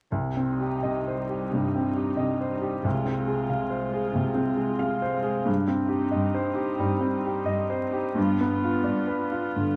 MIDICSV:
0, 0, Header, 1, 4, 480
1, 0, Start_track
1, 0, Key_signature, -3, "minor"
1, 0, Tempo, 699301
1, 84, Time_signature, 4, 2, 24, 8
1, 1042, Tempo, 661521
1, 5362, Tempo, 699301
1, 6934, End_track
2, 0, Start_track
2, 0, Title_t, "Grand piano"
2, 0, Program_c, 0, 0
2, 83, Note_on_c, 0, 36, 35
2, 199, Control_c, 0, 64, 127
2, 253, Note_on_c, 0, 60, 27
2, 415, Note_on_c, 0, 67, 28
2, 511, Note_off_c, 0, 60, 0
2, 569, Note_on_c, 0, 75, 29
2, 669, Note_off_c, 0, 67, 0
2, 739, Note_on_c, 0, 72, 27
2, 823, Note_off_c, 0, 75, 0
2, 886, Note_on_c, 0, 67, 24
2, 985, Note_off_c, 0, 72, 0
2, 1014, Note_off_c, 0, 36, 0
2, 1055, Note_on_c, 0, 43, 25
2, 1138, Note_off_c, 0, 67, 0
2, 1215, Note_on_c, 0, 60, 28
2, 1305, Note_off_c, 0, 43, 0
2, 1367, Note_on_c, 0, 67, 22
2, 1464, Note_off_c, 0, 60, 0
2, 1515, Note_on_c, 0, 75, 35
2, 1622, Note_off_c, 0, 67, 0
2, 1688, Note_on_c, 0, 72, 30
2, 1778, Note_off_c, 0, 75, 0
2, 1838, Note_on_c, 0, 67, 29
2, 1944, Note_off_c, 0, 72, 0
2, 2002, Note_off_c, 0, 67, 0
2, 2004, Note_on_c, 0, 36, 41
2, 2019, Control_c, 0, 64, 0
2, 2144, Control_c, 0, 64, 127
2, 2155, Note_on_c, 0, 60, 29
2, 2314, Note_on_c, 0, 68, 29
2, 2417, Note_off_c, 0, 60, 0
2, 2479, Note_on_c, 0, 77, 28
2, 2577, Note_off_c, 0, 68, 0
2, 2628, Note_on_c, 0, 72, 30
2, 2736, Note_off_c, 0, 77, 0
2, 2794, Note_on_c, 0, 68, 27
2, 2887, Note_off_c, 0, 72, 0
2, 2928, Note_off_c, 0, 36, 0
2, 2954, Note_on_c, 0, 48, 29
2, 3048, Note_off_c, 0, 68, 0
2, 3093, Note_on_c, 0, 60, 31
2, 3209, Note_off_c, 0, 48, 0
2, 3259, Note_on_c, 0, 68, 28
2, 3362, Note_off_c, 0, 60, 0
2, 3417, Note_on_c, 0, 77, 39
2, 3526, Note_off_c, 0, 68, 0
2, 3584, Note_on_c, 0, 72, 38
2, 3685, Note_off_c, 0, 77, 0
2, 3735, Note_on_c, 0, 68, 35
2, 3846, Note_off_c, 0, 72, 0
2, 3899, Note_on_c, 0, 43, 41
2, 3906, Note_off_c, 0, 68, 0
2, 3932, Control_c, 0, 64, 0
2, 4038, Control_c, 0, 64, 127
2, 4059, Note_on_c, 0, 60, 35
2, 4212, Note_on_c, 0, 67, 34
2, 4328, Note_off_c, 0, 60, 0
2, 4376, Note_on_c, 0, 75, 31
2, 4485, Note_off_c, 0, 67, 0
2, 4544, Note_on_c, 0, 72, 37
2, 4645, Note_off_c, 0, 75, 0
2, 4694, Note_on_c, 0, 67, 31
2, 4807, Note_off_c, 0, 72, 0
2, 4842, Note_off_c, 0, 43, 0
2, 4872, Note_on_c, 0, 55, 33
2, 4961, Note_off_c, 0, 67, 0
2, 5027, Note_on_c, 0, 60, 34
2, 5131, Note_off_c, 0, 55, 0
2, 5202, Note_on_c, 0, 67, 34
2, 5291, Note_off_c, 0, 60, 0
2, 5352, Note_on_c, 0, 75, 41
2, 5457, Note_off_c, 0, 67, 0
2, 5518, Note_on_c, 0, 72, 37
2, 5609, Note_off_c, 0, 75, 0
2, 5674, Note_on_c, 0, 67, 35
2, 5772, Note_off_c, 0, 72, 0
2, 5829, Note_on_c, 0, 43, 47
2, 5835, Note_off_c, 0, 67, 0
2, 5849, Control_c, 0, 64, 0
2, 5961, Control_c, 0, 64, 127
2, 6003, Note_on_c, 0, 59, 38
2, 6163, Note_on_c, 0, 65, 34
2, 6259, Note_off_c, 0, 59, 0
2, 6301, Note_on_c, 0, 74, 29
2, 6418, Note_off_c, 0, 65, 0
2, 6464, Note_on_c, 0, 71, 35
2, 6565, Note_off_c, 0, 74, 0
2, 6629, Note_on_c, 0, 65, 35
2, 6726, Note_off_c, 0, 71, 0
2, 6767, Note_off_c, 0, 43, 0
2, 6798, Note_on_c, 0, 50, 31
2, 6892, Note_off_c, 0, 65, 0
2, 6934, Note_off_c, 0, 50, 0
2, 6934, End_track
3, 0, Start_track
3, 0, Title_t, "Viola section"
3, 0, Program_c, 1, 48
3, 334, Note_on_c, 1, 55, 28
3, 335, Note_on_c, 1, 63, 27
3, 802, Note_off_c, 1, 55, 0
3, 802, Note_off_c, 1, 63, 0
3, 816, Note_on_c, 1, 55, 28
3, 818, Note_on_c, 1, 63, 25
3, 1273, Note_off_c, 1, 63, 0
3, 1276, Note_off_c, 1, 55, 0
3, 1282, Note_on_c, 1, 63, 29
3, 1285, Note_on_c, 1, 55, 27
3, 1756, Note_off_c, 1, 63, 0
3, 1757, Note_off_c, 1, 55, 0
3, 1769, Note_on_c, 1, 63, 22
3, 1770, Note_on_c, 1, 55, 27
3, 2004, Note_off_c, 1, 55, 0
3, 2004, Note_off_c, 1, 63, 0
3, 2009, Note_on_c, 1, 56, 26
3, 2009, Note_on_c, 1, 65, 28
3, 2243, Note_off_c, 1, 56, 0
3, 2243, Note_off_c, 1, 65, 0
3, 2254, Note_on_c, 1, 65, 30
3, 2255, Note_on_c, 1, 56, 28
3, 2715, Note_off_c, 1, 56, 0
3, 2716, Note_off_c, 1, 65, 0
3, 2723, Note_on_c, 1, 56, 29
3, 2724, Note_on_c, 1, 65, 31
3, 3178, Note_off_c, 1, 65, 0
3, 3179, Note_off_c, 1, 56, 0
3, 3186, Note_on_c, 1, 65, 26
3, 3188, Note_on_c, 1, 56, 26
3, 3665, Note_off_c, 1, 56, 0
3, 3665, Note_off_c, 1, 65, 0
3, 3675, Note_on_c, 1, 65, 28
3, 3678, Note_on_c, 1, 56, 31
3, 3911, Note_off_c, 1, 65, 0
3, 3912, Note_off_c, 1, 56, 0
3, 4159, Note_on_c, 1, 60, 34
3, 4163, Note_on_c, 1, 63, 35
3, 4624, Note_off_c, 1, 60, 0
3, 4627, Note_off_c, 1, 63, 0
3, 4632, Note_on_c, 1, 60, 32
3, 4635, Note_on_c, 1, 63, 35
3, 5101, Note_off_c, 1, 63, 0
3, 5102, Note_off_c, 1, 60, 0
3, 5110, Note_on_c, 1, 63, 29
3, 5111, Note_on_c, 1, 60, 33
3, 5579, Note_off_c, 1, 60, 0
3, 5584, Note_off_c, 1, 63, 0
3, 5588, Note_on_c, 1, 60, 28
3, 5591, Note_on_c, 1, 63, 33
3, 5827, Note_off_c, 1, 60, 0
3, 5829, Note_off_c, 1, 63, 0
3, 5834, Note_on_c, 1, 65, 36
3, 5835, Note_on_c, 1, 59, 33
3, 6071, Note_off_c, 1, 59, 0
3, 6073, Note_off_c, 1, 65, 0
3, 6079, Note_on_c, 1, 59, 38
3, 6080, Note_on_c, 1, 65, 32
3, 6548, Note_off_c, 1, 65, 0
3, 6550, Note_off_c, 1, 59, 0
3, 6557, Note_on_c, 1, 65, 32
3, 6558, Note_on_c, 1, 59, 34
3, 6934, Note_off_c, 1, 59, 0
3, 6934, Note_off_c, 1, 65, 0
3, 6934, End_track
4, 0, Start_track
4, 0, Title_t, "Cello section"
4, 0, Program_c, 2, 48
4, 90, Note_on_c, 2, 48, 35
4, 500, Note_off_c, 2, 48, 0
4, 574, Note_on_c, 2, 48, 36
4, 969, Note_off_c, 2, 48, 0
4, 1043, Note_on_c, 2, 48, 40
4, 1446, Note_off_c, 2, 48, 0
4, 1519, Note_on_c, 2, 48, 43
4, 1928, Note_off_c, 2, 48, 0
4, 2006, Note_on_c, 2, 48, 38
4, 2410, Note_off_c, 2, 48, 0
4, 2484, Note_on_c, 2, 48, 35
4, 2881, Note_off_c, 2, 48, 0
4, 2951, Note_on_c, 2, 48, 42
4, 3356, Note_off_c, 2, 48, 0
4, 3433, Note_on_c, 2, 48, 44
4, 3838, Note_off_c, 2, 48, 0
4, 3911, Note_on_c, 2, 43, 41
4, 4321, Note_off_c, 2, 43, 0
4, 4396, Note_on_c, 2, 43, 43
4, 4800, Note_off_c, 2, 43, 0
4, 4875, Note_on_c, 2, 43, 50
4, 5282, Note_off_c, 2, 43, 0
4, 5357, Note_on_c, 2, 43, 50
4, 5759, Note_off_c, 2, 43, 0
4, 5832, Note_on_c, 2, 43, 44
4, 6243, Note_off_c, 2, 43, 0
4, 6321, Note_on_c, 2, 43, 45
4, 6723, Note_off_c, 2, 43, 0
4, 6802, Note_on_c, 2, 43, 46
4, 6934, Note_off_c, 2, 43, 0
4, 6934, End_track
0, 0, End_of_file